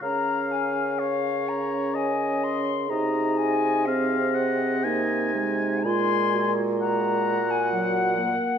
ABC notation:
X:1
M:3/4
L:1/16
Q:1/4=62
K:Db
V:1 name="Flute"
b2 a2 f2 b2 a2 c'2 | b2 a2 e8 | c'3 z b3 a g4 |]
V:2 name="Oboe"
f4 d4 e4 | e4 f2 g2 a4 | a2 z2 g8 |]
V:3 name="Clarinet"
B12 | A4 A4 E4 | F2 G8 z2 |]
V:4 name="French horn"
D12 | E4 C4 B,2 A,2- | A,6 z2 G,2 B,2 |]
V:5 name="Bassoon" clef=bass
D,12 | C,12 | B,,8- B,,2 z2 |]